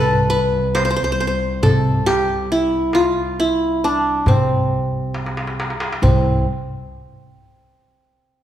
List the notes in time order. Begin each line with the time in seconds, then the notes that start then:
Already playing: C2 C3 A4 B4
0.30 B4, darbuka ka
0.75 C5, darbuka tek
0.85 C5
0.90 C5
0.96 C5
1.04 C5
1.12 C5
1.20 C5, darbuka ka
1.27 C5
1.63 C3 A4, darbuka dum
2.06 G4, darbuka tek
2.50 E4, darbuka ka
2.93 F4, darbuka tek
3.40 E4
3.84 D4
4.26 C3 C4, darbuka dum
5.14 darbuka tek
5.26 darbuka ka
5.37 darbuka tek
5.47 darbuka ka
5.60 darbuka tek
5.70 darbuka ka
5.80 darbuka tek
5.92 darbuka ka
6.02 C2 C4, darbuka dum